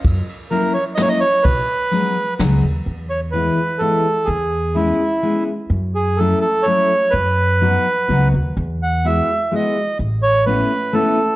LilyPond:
<<
  \new Staff \with { instrumentName = "Accordion" } { \time 3/4 \key b \major \tempo 4 = 126 r4 ais'8 cis''8 dis''32 cis''32 dis''16 cis''8 | b'2 r4 | \key e \major r8 cis''8 b'4 a'4 | gis'4 e'4. r8 |
r8 gis'8 a'8 a'8 cis''4 | b'2~ b'8 r8 | r8 fis''8 e''4 dis''4 | r8 cis''8 b'4 a'4 | }
  \new Staff \with { instrumentName = "Steel-string acoustic guitar" } { \time 3/4 \key b \major r4 <fis ais cis' e'>8 r8 <fis ais cis' e'>8 r8 | r4 <fis gis b dis'>8 r8 <fis gis b dis'>8 r8 | \key e \major r4 <e gis b e'>8 r8 <e gis b e'>8 r8 | r4 <gis b cis' e'>8 r8 <gis b cis' e'>8 r8 |
r4 <fis a cis' e'>8 r8 <fis a cis' e'>8 r8 | r4 <fis b dis' fis'>8 r8 <fis b dis' fis'>8 r8 | r4 <gis b e' fis'>8 r8 <gis b e' fis'>8 r8 | r4 <a b cis' e'>8 r8 <a b cis' e'>8 r8 | }
  \new Staff \with { instrumentName = "Upright bass" } { \clef bass \time 3/4 \key b \major fis,8 r2 r8 | b,,8 r4. cis,8 dis,8 | \key e \major e,2 r4 | e,2 r4 |
fis,2 r4 | fis,2 cis,8 dis,8 | e,2 r4 | a,,2 r4 | }
  \new DrumStaff \with { instrumentName = "Drums" } \drummode { \time 3/4 <bd cymr>8 cymr8 cymr4 <cymr sn>4 | <bd cymr>4 cymr4 <cymr sn>4 | r4 r4 r4 | r4 r4 r4 |
r4 r4 r4 | r4 r4 r4 | r4 r4 r4 | r4 r4 r4 | }
>>